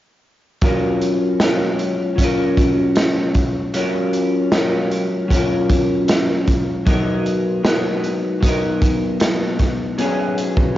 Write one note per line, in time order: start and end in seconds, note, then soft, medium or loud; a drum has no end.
0.61 1.39 F#3 medium
0.61 1.40 C#4 medium
0.61 1.41 F4 medium
0.61 1.43 A#4 medium
0.61 kick loud
0.61 closed hi-hat medium
1.01 closed hi-hat medium
1.40 2.15 F#3 soft
1.40 2.18 C#4 medium
1.40 2.19 F4 medium
1.40 2.24 A#4 medium
1.40 snare medium
1.40 closed hi-hat medium
1.79 closed hi-hat medium
2.16 3.73 F#3 medium
2.16 3.73 C#4 medium
2.16 kick medium
2.16 closed hi-hat medium
2.22 3.74 F4 medium
2.22 3.76 A#4 medium
2.57 kick medium
2.57 closed hi-hat medium
2.95 snare medium
2.95 closed hi-hat medium
3.34 kick medium
3.34 closed hi-hat medium
3.74 4.51 F#3 medium
3.74 4.52 C#4 medium
3.74 4.53 F4 medium
3.74 4.55 A#4 medium
3.74 closed hi-hat medium
4.13 closed hi-hat medium
4.52 5.28 F#3 medium
4.52 5.31 C#4 medium
4.52 5.32 F4 medium
4.52 5.36 A#4 medium
4.52 snare medium
4.52 closed hi-hat medium
4.91 closed hi-hat medium
5.28 6.85 F#3 medium
5.28 6.86 C#4 medium
5.28 kick medium
5.28 closed hi-hat medium
5.34 6.87 F4 medium
5.34 6.88 A#4 medium
5.69 kick medium
5.69 closed hi-hat medium
6.08 snare medium
6.08 closed hi-hat medium
6.47 kick medium
6.47 closed hi-hat medium
6.86 7.63 F#3 medium
6.86 7.65 B3 medium
6.86 7.65 D#4 medium
6.86 7.66 A#4 medium
6.86 kick medium
6.86 closed hi-hat medium
7.26 closed hi-hat medium
7.63 8.40 F#3 medium
7.63 8.43 B3 medium
7.63 8.43 D#4 medium
7.63 8.44 A#4 medium
7.63 snare loud
7.63 closed hi-hat medium
8.04 closed hi-hat soft
8.40 9.97 F#3 medium
8.40 9.98 B3 medium
8.40 kick medium
8.40 closed hi-hat medium
8.46 9.99 D#4 medium
8.46 10.00 A#4 medium
8.82 kick medium
8.82 closed hi-hat medium
9.20 snare medium
9.20 closed hi-hat medium
9.59 kick medium
9.59 snare soft
9.59 closed hi-hat medium
9.98 10.75 F#3 medium
9.98 10.75 B3 medium
9.98 10.77 C#4 medium
9.98 10.77 G#4 medium
9.98 closed hi-hat medium
10.38 closed hi-hat medium
10.57 kick medium